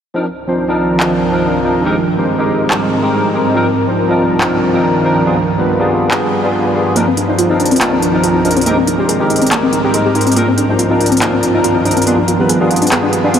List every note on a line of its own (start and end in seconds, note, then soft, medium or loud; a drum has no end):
0.14 1.84 C2 medium
0.14 1.84 G2 medium
0.14 1.84 D#3 medium
0.14 0.24 F3 medium
0.14 1.84 F3 medium
0.14 0.24 C4 medium
0.14 0.25 D4 medium
0.14 1.84 D4 medium
0.14 0.25 D#4 medium
0.14 1.84 A#4 medium
0.14 0.25 A#4 medium
0.47 0.66 F3 medium
0.47 0.66 C4 medium
0.47 0.66 D4 medium
0.47 0.67 D#4 medium
0.47 0.67 C5 medium
0.68 0.97 F3 medium
0.68 0.98 C4 medium
0.68 0.98 D4 medium
0.68 0.98 D#4 medium
0.68 0.98 A#4 medium
0.99 1.30 F3 medium
0.99 1.30 C4 medium
0.99 1.30 D4 medium
0.99 1.30 D#4 medium
0.99 1.31 A#4 medium
0.99 clap loud
1.32 1.61 F3 medium
1.32 1.61 C4 medium
1.32 1.62 D4 medium
1.32 1.62 D#4 medium
1.32 1.62 A#4 medium
1.63 1.82 F3 medium
1.63 1.83 C4 medium
1.63 1.83 D4 medium
1.63 1.83 D#4 medium
1.63 1.83 A#4 medium
1.84 3.54 G#2 medium
1.84 3.54 G3 medium
1.84 1.94 G#3 medium
1.84 1.95 C4 medium
1.84 3.54 C4 medium
1.84 1.95 D#4 medium
1.84 1.95 G4 medium
1.84 5.22 A#4 medium
1.84 1.95 A#4 loud
2.17 2.36 G#3 medium
2.17 2.36 C4 medium
2.17 2.37 D#4 medium
2.17 2.37 G4 medium
2.17 2.37 C5 medium
2.38 2.67 G#3 medium
2.38 2.68 C4 medium
2.38 2.68 D#4 medium
2.38 2.68 G4 medium
2.38 2.68 A#4 medium
2.69 3.00 G#3 medium
2.69 3.00 C4 medium
2.69 3.00 D#4 medium
2.69 3.01 G4 medium
2.69 3.01 A#4 medium
2.69 clap loud
3.02 3.31 G#3 medium
3.02 3.32 C4 medium
3.02 3.32 D#4 medium
3.02 3.32 G4 medium
3.02 3.32 A#4 medium
3.33 3.53 G#3 medium
3.33 3.53 C4 medium
3.33 3.53 D#4 medium
3.33 3.54 G4 medium
3.33 3.54 A#4 medium
3.55 5.24 C2 medium
3.55 8.62 G2 medium
3.55 5.24 D#3 medium
3.55 3.65 F3 medium
3.55 5.24 F3 medium
3.55 3.65 C4 medium
3.55 3.65 D4 medium
3.55 5.24 D4 medium
3.55 3.65 D#4 medium
3.55 3.66 A#4 medium
3.87 4.06 F3 medium
3.87 4.07 C4 medium
3.87 4.07 D4 medium
3.87 4.07 D#4 medium
3.87 4.07 C5 medium
4.09 4.38 F3 medium
4.09 4.38 C4 medium
4.09 4.38 D4 medium
4.09 4.39 D#4 medium
4.09 4.39 A#4 medium
4.40 4.70 F3 medium
4.40 4.70 C4 medium
4.40 4.71 D4 medium
4.40 4.71 D#4 medium
4.40 4.71 A#4 medium
4.40 clap loud
4.73 5.02 F3 medium
4.73 5.02 C4 medium
4.73 5.02 D4 medium
4.73 5.02 D#4 medium
4.73 5.03 A#4 medium
5.04 5.23 F3 medium
5.04 5.23 C4 medium
5.04 5.23 D4 medium
5.04 5.24 D#4 medium
5.04 5.24 A#4 medium
5.25 8.63 F3 medium
5.25 5.35 G3 medium
5.25 5.35 B3 medium
5.25 5.35 D4 medium
5.25 5.36 F4 medium
5.25 6.94 G#4 medium
5.25 5.36 G#4 medium
5.25 6.94 B4 medium
5.58 5.77 G3 medium
5.58 5.77 B3 medium
5.58 5.77 D4 medium
5.58 5.77 F4 medium
5.58 5.78 B4 medium
5.79 6.08 G3 medium
5.79 6.08 B3 medium
5.79 6.09 D4 medium
5.79 6.09 F4 medium
5.79 6.09 G#4 medium
6.10 6.40 G3 medium
6.10 6.41 B3 medium
6.10 6.41 D4 medium
6.10 6.41 F4 medium
6.10 6.41 G#4 medium
6.10 clap loud
6.43 6.72 G3 medium
6.43 6.72 B3 medium
6.43 6.73 D4 medium
6.43 6.73 F4 medium
6.43 6.73 G#4 medium
6.74 6.93 G3 medium
6.74 6.93 B3 medium
6.74 6.94 D4 medium
6.74 6.94 F4 medium
6.74 6.94 G#4 medium
6.95 8.64 C2 medium
6.95 8.64 D#3 medium
6.95 7.05 F3 medium
6.95 7.04 A#3 medium
6.95 7.05 C4 medium
6.95 8.64 D4 medium
6.95 7.06 D4 medium
6.95 7.06 D#4 medium
6.95 12.03 A#4 medium
6.95 7.06 A#4 medium
6.95 closed hi-hat medium
7.07 7.14 C4 medium
7.17 7.25 D4 medium
7.17 closed hi-hat medium
7.28 7.47 F3 medium
7.28 7.47 C4 medium
7.28 7.47 D4 medium
7.28 7.38 D#4 medium
7.28 7.47 D#4 medium
7.28 7.48 C5 medium
7.39 7.49 F4 loud
7.39 closed hi-hat medium
7.49 7.78 F3 medium
7.49 7.79 C4 medium
7.49 7.79 D4 medium
7.49 7.59 D#4 medium
7.49 7.79 D#4 medium
7.49 7.79 A#4 medium
7.60 7.71 D4 medium
7.60 closed hi-hat soft
7.66 closed hi-hat medium
7.71 7.78 C4 loud
7.71 closed hi-hat soft
7.76 closed hi-hat medium
7.80 8.11 F3 medium
7.80 7.89 A#3 medium
7.80 8.11 C4 medium
7.80 8.11 D4 medium
7.80 8.11 D#4 medium
7.80 8.12 A#4 medium
7.80 clap loud
7.80 closed hi-hat medium
7.93 7.99 C4 medium
8.02 8.10 D4 medium
8.02 closed hi-hat medium
8.13 8.42 F3 medium
8.13 8.42 C4 medium
8.13 8.43 D4 medium
8.13 8.23 D#4 medium
8.13 8.43 D#4 medium
8.13 8.43 A#4 medium
8.24 8.35 F4 loud
8.24 closed hi-hat medium
8.35 8.44 D#4 medium
8.44 8.63 F3 medium
8.44 8.64 C4 medium
8.44 8.64 D4 medium
8.44 8.56 D4 medium
8.44 8.64 D#4 medium
8.44 8.64 A#4 medium
8.44 closed hi-hat soft
8.51 closed hi-hat medium
8.57 8.63 C4 loud
8.57 closed hi-hat soft
8.61 8.75 G#3 medium
8.61 closed hi-hat medium
8.66 10.35 G#2 medium
8.66 10.35 G3 medium
8.66 8.74 A#3 medium
8.66 8.76 C4 medium
8.66 10.35 C4 medium
8.66 8.76 D#4 medium
8.66 8.76 G4 medium
8.66 8.76 A#4 loud
8.66 closed hi-hat medium
8.78 8.84 C4 medium
8.87 8.95 D#4 medium
8.87 closed hi-hat medium
8.98 9.17 G#3 medium
8.98 9.17 C4 medium
8.98 9.17 D#4 medium
8.98 9.08 G4 medium
8.98 9.18 G4 medium
8.98 9.18 C5 medium
9.09 9.20 G#4 medium
9.09 closed hi-hat medium
9.19 9.48 G#3 medium
9.19 9.49 C4 medium
9.19 9.49 D#4 medium
9.19 9.30 G4 medium
9.19 9.49 G4 medium
9.19 9.49 A#4 medium
9.30 9.41 D#4 medium
9.30 closed hi-hat soft
9.36 closed hi-hat medium
9.42 9.48 C4 loud
9.42 closed hi-hat soft
9.47 closed hi-hat medium
9.51 9.81 G#3 medium
9.51 9.59 A#3 medium
9.51 9.81 C4 medium
9.51 9.82 D#4 medium
9.51 9.82 G4 medium
9.51 9.82 A#4 medium
9.51 clap loud
9.51 closed hi-hat medium
9.63 9.69 C4 loud
9.73 9.80 D#4 medium
9.73 closed hi-hat medium
9.83 10.12 G#3 medium
9.83 10.13 C4 medium
9.83 10.13 D#4 medium
9.83 9.94 G4 medium
9.83 10.13 G4 medium
9.83 10.13 A#4 medium
9.94 10.05 G#4 loud
9.94 closed hi-hat medium
10.05 10.15 G4 medium
10.15 10.34 G#3 medium
10.15 10.34 C4 medium
10.15 10.26 D#4 medium
10.15 10.34 D#4 medium
10.15 10.35 G4 medium
10.15 10.35 A#4 medium
10.15 closed hi-hat soft
10.21 closed hi-hat medium
10.27 10.33 C4 loud
10.27 closed hi-hat soft
10.32 closed hi-hat medium
10.36 12.05 C2 medium
10.36 13.39 G2 medium
10.36 12.05 D#3 medium
10.36 10.46 F3 medium
10.36 13.39 F3 medium
10.36 10.44 A#3 medium
10.36 10.46 C4 medium
10.36 12.05 D4 medium
10.36 10.46 D4 medium
10.36 10.46 D#4 medium
10.36 10.47 A#4 loud
10.36 closed hi-hat medium
10.48 10.55 C4 medium
10.58 10.65 D4 medium
10.58 closed hi-hat medium
10.68 10.87 F3 medium
10.68 10.87 C4 medium
10.68 10.88 D4 medium
10.68 10.79 D#4 medium
10.68 10.88 D#4 medium
10.68 10.88 C5 medium
10.79 10.90 F4 medium
10.79 closed hi-hat medium
10.89 11.19 F3 medium
10.89 11.19 C4 medium
10.89 11.19 D4 medium
10.89 11.00 D#4 medium
10.89 11.19 D#4 medium
10.89 11.20 A#4 medium
11.00 11.11 D4 medium
11.00 closed hi-hat soft
11.06 closed hi-hat medium
11.12 11.18 C4 loud
11.12 closed hi-hat soft
11.17 11.51 F3 medium
11.17 closed hi-hat medium
11.21 11.29 A#3 medium
11.21 11.51 C4 medium
11.21 11.52 D4 medium
11.21 11.52 D#4 medium
11.21 11.52 A#4 medium
11.21 clap loud
11.21 closed hi-hat medium
11.33 11.40 C4 loud
11.43 11.51 D4 medium
11.43 closed hi-hat medium
11.53 11.83 F3 medium
11.53 11.83 C4 medium
11.53 11.83 D4 medium
11.53 11.64 D#4 medium
11.53 11.83 D#4 medium
11.53 11.84 A#4 medium
11.64 11.75 F4 loud
11.64 closed hi-hat medium
11.76 11.85 D#4 medium
11.84 12.04 F3 medium
11.84 12.04 C4 medium
11.84 11.96 D4 medium
11.84 12.04 D4 medium
11.84 12.04 D#4 medium
11.84 12.05 A#4 medium
11.84 closed hi-hat soft
11.91 closed hi-hat medium
11.97 12.03 C4 loud
11.97 closed hi-hat soft
12.02 12.16 G3 medium
12.02 closed hi-hat medium
12.06 12.16 B3 medium
12.06 12.14 B3 medium
12.06 12.16 D4 medium
12.06 12.16 F4 medium
12.06 13.39 G#4 medium
12.06 12.17 G#4 loud
12.06 13.39 B4 medium
12.06 closed hi-hat medium
12.18 12.25 D4 medium
12.28 12.36 F4 medium
12.28 closed hi-hat medium
12.38 12.57 G3 medium
12.38 12.58 B3 medium
12.38 12.58 D4 medium
12.38 12.58 F4 medium
12.38 12.49 G4 medium
12.38 12.58 B4 medium
12.49 12.60 G#4 medium
12.49 closed hi-hat medium
12.60 12.89 G3 medium
12.60 12.89 B3 medium
12.60 12.89 D4 medium
12.60 12.90 F4 medium
12.60 12.70 G4 medium
12.60 12.90 G#4 medium
12.70 12.81 F4 medium
12.70 closed hi-hat soft
12.76 closed hi-hat medium
12.82 12.89 D4 loud
12.82 closed hi-hat soft
12.87 closed hi-hat medium
12.91 13.21 G3 medium
12.91 13.21 B3 medium
12.91 12.99 B3 medium
12.91 13.22 D4 medium
12.91 13.22 F4 medium
12.91 13.22 G#4 medium
12.91 clap loud
12.91 closed hi-hat medium
13.03 13.10 D4 loud
13.13 13.21 G4 medium
13.13 closed hi-hat medium
13.23 13.39 G3 medium
13.23 13.39 B3 medium
13.23 13.28 D4 loud
13.23 13.39 D4 medium
13.23 13.39 F4 medium
13.23 13.39 G#4 medium
13.34 13.39 B3 loud
13.34 closed hi-hat medium